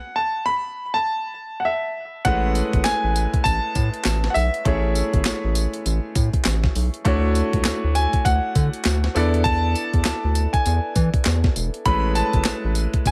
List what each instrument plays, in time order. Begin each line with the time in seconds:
Already playing: grand piano F#5
0.16 grand piano A5
0.46 grand piano B5
0.94 grand piano A5
1.60 grand piano F#5
1.65 grand piano E5
2.25 analog synth bass A1, grand piano G#3 A3 C#4 E4 B4 F#5, kick, closed hi-hat
2.55 closed hi-hat, tambourine
2.73 analog synth bass G#1, kick, closed hi-hat
2.84 analog synth bass A1, grand piano G#5, snare, clap, closed hi-hat, tambourine
3.04 analog synth bass A1
3.16 closed hi-hat, tambourine
3.34 kick, closed hi-hat
3.44 analog synth bass A1, grand piano A5, kick, closed hi-hat, tambourine
3.75 analog synth bass A2, kick, closed hi-hat, tambourine
3.94 closed hi-hat
4.05 analog synth bass A1, snare, clap, closed hi-hat, tambourine
4.24 snare
4.30 grand piano F#5
4.34 analog synth bass B1, grand piano E5, open hi-hat, tambourine
4.54 closed hi-hat
4.65 analog synth bass A1, grand piano A3 C#4 E4 G#4 C#5, kick, closed hi-hat
4.95 closed hi-hat, tambourine
5.14 analog synth bass G#1, kick, closed hi-hat
5.25 analog synth bass A1, snare, clap, closed hi-hat, tambourine
5.44 analog synth bass A1
5.55 closed hi-hat, tambourine
5.74 closed hi-hat
5.86 analog synth bass A1, closed hi-hat, tambourine
6.15 analog synth bass A2, kick, closed hi-hat, tambourine
6.33 kick, closed hi-hat
6.45 analog synth bass A1, snare, clap, closed hi-hat, tambourine
6.64 kick, snare
6.75 analog synth bass B1, open hi-hat, tambourine
6.94 closed hi-hat
7.05 analog synth bass D2, grand piano A3 D4 E4 F#4 C#5, kick, closed hi-hat
7.35 closed hi-hat, tambourine
7.53 analog synth bass C#2, kick, closed hi-hat
7.65 analog synth bass D2, snare, clap, closed hi-hat, tambourine
7.84 analog synth bass D2
7.95 grand piano G#5, closed hi-hat, tambourine
8.13 kick, closed hi-hat
8.25 analog synth bass D2, grand piano F#5, kick, closed hi-hat, tambourine
8.55 analog synth bass D3, kick, closed hi-hat, tambourine
8.73 closed hi-hat
8.85 analog synth bass D2, snare, clap, closed hi-hat, tambourine
9.04 snare
9.15 analog synth bass E2, grand piano B3 D4 E4 A4 D5, open hi-hat, tambourine
9.34 closed hi-hat
9.44 grand piano A5, kick, closed hi-hat
9.75 closed hi-hat, tambourine
9.94 analog synth bass E2, kick, closed hi-hat
10.05 analog synth bass D2, snare, clap, closed hi-hat, tambourine
10.24 analog synth bass D2
10.35 closed hi-hat, tambourine
10.53 grand piano G#5, kick, closed hi-hat
10.66 analog synth bass E2, closed hi-hat, tambourine
10.95 analog synth bass E3, kick, closed hi-hat, tambourine
11.14 kick, closed hi-hat
11.25 analog synth bass E2, snare, clap, closed hi-hat, tambourine
11.44 kick, snare
11.56 analog synth bass E1, closed hi-hat, tambourine
11.74 closed hi-hat
11.85 analog synth bass A1, grand piano G#3 A3 C#4 E4 B4 B5, kick, closed hi-hat
12.15 grand piano A5, closed hi-hat, tambourine
12.33 analog synth bass G#1, kick, closed hi-hat
12.45 analog synth bass A1, snare, clap, closed hi-hat, tambourine
12.64 analog synth bass A1
12.75 closed hi-hat, tambourine
12.94 kick, closed hi-hat
13.06 analog synth bass A1, grand piano G#5, kick, closed hi-hat, tambourine